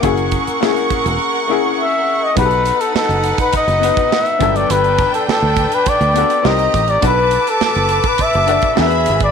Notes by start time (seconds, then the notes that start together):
0.00 F#1 A#3 C#4 E4 A#4 F#5 C#6, kick, closed hi-hat
0.04 G#4
0.17 closed hi-hat
0.32 kick, closed hi-hat
0.47 muted fingered electric bass stroke, closed hi-hat
0.60 A#3 C#4 E4 G#4, snare
0.77 closed hi-hat
0.90 muted fingered electric bass stroke, kick, closed hi-hat
1.06 E1, closed hi-hat
1.48 A#3 C#4 E4 G#4
1.80 E5
2.23 D#5
2.35 B1 B3 D#4 F#4 G4 B4 F#5, kick, closed hi-hat
2.45 A4
2.51 closed hi-hat
2.65 closed hi-hat
2.81 A4, closed hi-hat
2.95 A4, muted fingered electric bass stroke, snare
3.09 F#1, closed hi-hat
3.24 closed hi-hat
3.38 B4, kick, closed hi-hat
3.53 D#5, muted fingered electric bass stroke, kick, closed hi-hat
3.67 F#1, closed hi-hat
3.80 B3 D#4 F#4, closed hi-hat
3.84 B4
3.97 kick, closed hi-hat
4.12 E5, snare
4.26 closed hi-hat
4.39 G1 F#3 B3 D4 A4 B4 G5, kick, closed hi-hat
4.56 D5, closed hi-hat
4.70 G1 B4, closed hi-hat
4.84 closed hi-hat
4.98 kick, closed hi-hat
5.14 A4, closed hi-hat
5.28 A4, muted fingered electric bass stroke, snare
5.42 D2
5.56 kick, closed hi-hat
5.72 B4, closed hi-hat
5.86 D5, muted fingered electric bass stroke, kick, closed hi-hat
6.01 D2, closed hi-hat
6.14 B3 D4 F#4, closed hi-hat
6.18 A4
6.30 closed hi-hat
6.43 C2 C4 D#4 G4 A#4 D#5 A#5, snare
6.47 D#5
6.59 closed hi-hat
6.74 A1, kick, closed hi-hat
6.88 D5, closed hi-hat
7.01 B1 D4 F#4 A4 B4 A5 D6, kick, closed hi-hat
7.06 B4
7.31 closed hi-hat
7.47 A4, closed hi-hat
7.61 A4, muted fingered electric bass stroke, snare
7.75 F#1, closed hi-hat
7.89 closed hi-hat
8.04 kick, closed hi-hat
8.08 B4
8.18 muted fingered electric bass stroke, kick, closed hi-hat
8.23 E5
8.33 F#1, closed hi-hat
8.47 D4 F#4 A4 D5, closed hi-hat
8.62 kick, closed hi-hat
8.75 E2 D4 F#4 G#4 A#4 E5 B5, snare
8.80 E5
8.86 B4
8.90 closed hi-hat
9.06 G#1, closed hi-hat
9.20 D5, kick, closed hi-hat